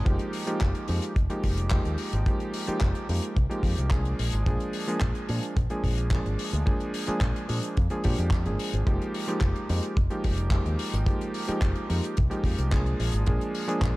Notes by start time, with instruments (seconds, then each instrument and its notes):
0.05 fingered electric bass F1, electric grand piano F3 G#3 A#3 D#4 G4, kick, closed hi-hat
0.19 closed hi-hat
0.33 open hi-hat
0.47 electric grand piano F3 G#3 A#3 D#4 G4, closed hi-hat
0.61 fingered electric bass F1, kick, clap, closed hi-hat
0.75 closed hi-hat
0.88 fingered electric bass F2, electric grand piano F3 G#3 A#3 D#4 G4, open hi-hat
1.02 closed hi-hat
1.16 fingered electric bass F1, kick, closed hi-hat
1.30 electric grand piano F3 G#3 A#3 D#4 G4, closed hi-hat
1.43 fingered electric bass F1, kick, open hi-hat
1.57 closed hi-hat
1.70 electric grand piano F3 G#3 A#3 D#4 G4, kick, clap, closed hi-hat
1.85 fingered electric bass D#2, closed hi-hat
1.98 open hi-hat
2.13 fingered electric bass G#1, closed hi-hat
2.26 electric grand piano F3 G#3 A#3 D#4 G4, kick, closed hi-hat
2.40 closed hi-hat
2.54 open hi-hat
2.67 electric grand piano F3 G#3 A#3 D#4 G4, muted fingered electric bass stroke, closed hi-hat
2.81 fingered electric bass F1, kick, clap, closed hi-hat
2.95 closed hi-hat
3.09 fingered electric bass F2, electric grand piano F3 G#3 A#3 D#4 G4, open hi-hat
3.22 closed hi-hat
3.37 fingered electric bass C2, kick, closed hi-hat
3.49 electric grand piano F3 G#3 A#3 D#4 G4, closed hi-hat
3.63 fingered electric bass F2, kick, open hi-hat
3.78 fingered electric bass C2, closed hi-hat
3.91 electric grand piano F3 G#3 A#3 D4 G#4, kick, clap, closed hi-hat
4.05 closed hi-hat
4.19 fingered electric bass A#1, open hi-hat
4.33 fingered electric bass G#1, closed hi-hat
4.46 fingered electric bass A#1, electric grand piano F3 G#3 A#3 D4 G#4, kick, closed hi-hat
4.60 closed hi-hat
4.73 open hi-hat
4.87 electric grand piano F3 G#3 A#3 D4 G#4, closed hi-hat
5.01 fingered electric bass A#1, kick, clap, closed hi-hat
5.15 closed hi-hat
5.29 fingered electric bass A#2, electric grand piano F3 G#3 A#3 D4 G#4, open hi-hat
5.43 closed hi-hat
5.57 fingered electric bass A#1, kick, closed hi-hat
5.70 electric grand piano F3 G#3 A#3 D4 G#4, closed hi-hat
5.84 fingered electric bass A#1, kick, open hi-hat
5.98 closed hi-hat
6.11 electric grand piano F3 G#3 A#3 D4 G#4, kick, clap, closed hi-hat
6.25 fingered electric bass G#1, closed hi-hat
6.39 open hi-hat
6.53 fingered electric bass D2, closed hi-hat
6.66 electric grand piano F3 G#3 A#3 D4 G#4, kick, closed hi-hat
6.80 closed hi-hat
6.94 open hi-hat
7.07 electric grand piano F3 G#3 A#3 D4 G#4, muted fingered electric bass stroke, closed hi-hat
7.21 fingered electric bass A#1, kick, clap, closed hi-hat
7.36 closed hi-hat
7.48 fingered electric bass A#2, electric grand piano F3 G#3 A#3 D4 G#4, open hi-hat
7.63 closed hi-hat
7.77 fingered electric bass F2, kick, closed hi-hat
7.90 electric grand piano F3 G#3 A#3 D4 G#4, closed hi-hat
8.04 fingered electric bass A#2, electric grand piano F3 G#3 A#3 D4 G4, kick, open hi-hat
8.18 fingered electric bass F2, closed hi-hat
8.31 kick, clap, closed hi-hat
8.45 fingered electric bass G#1, electric grand piano F3 G#3 A#3 D4 G#4, closed hi-hat
8.59 open hi-hat
8.73 fingered electric bass G#1, closed hi-hat
8.86 fingered electric bass F1, electric grand piano F3 G#3 A#3 D#4 G4, kick, closed hi-hat
9.02 closed hi-hat
9.14 open hi-hat
9.28 electric grand piano F3 G#3 A#3 D#4 G4, closed hi-hat
9.41 fingered electric bass F1, kick, clap, closed hi-hat
9.56 closed hi-hat
9.69 fingered electric bass F2, electric grand piano F3 G#3 A#3 D#4 G4, open hi-hat
9.83 closed hi-hat
9.97 fingered electric bass F1, kick, closed hi-hat
10.10 electric grand piano F3 G#3 A#3 D#4 G4, closed hi-hat
10.24 fingered electric bass F1, kick, open hi-hat
10.38 closed hi-hat
10.51 electric grand piano F3 G#3 A#3 D#4 G4, kick, clap, closed hi-hat
10.66 fingered electric bass D#2, closed hi-hat
10.79 open hi-hat
10.93 fingered electric bass G#1, closed hi-hat
11.06 electric grand piano F3 G#3 A#3 D#4 G4, kick, closed hi-hat
11.21 closed hi-hat
11.34 open hi-hat
11.47 electric grand piano F3 G#3 A#3 D#4 G4, muted fingered electric bass stroke, closed hi-hat
11.62 fingered electric bass F1, kick, clap, closed hi-hat
11.75 closed hi-hat
11.89 fingered electric bass F2, electric grand piano F3 G#3 A#3 D#4 G4, open hi-hat
12.04 closed hi-hat
12.17 fingered electric bass C2, kick, closed hi-hat
12.30 electric grand piano F3 G#3 A#3 D#4 G4, closed hi-hat
12.44 fingered electric bass F2, kick, open hi-hat
12.58 fingered electric bass C2, closed hi-hat
12.71 electric grand piano F3 G#3 A#3 D4 G#4, kick, clap, closed hi-hat
12.86 closed hi-hat
13.00 fingered electric bass A#1, open hi-hat
13.13 fingered electric bass G#1, closed hi-hat
13.26 fingered electric bass A#1, electric grand piano F3 G#3 A#3 D4 G#4, kick, closed hi-hat
13.41 closed hi-hat
13.55 open hi-hat
13.67 electric grand piano F3 G#3 A#3 D4 G#4, closed hi-hat
13.81 fingered electric bass A#1, kick, clap, closed hi-hat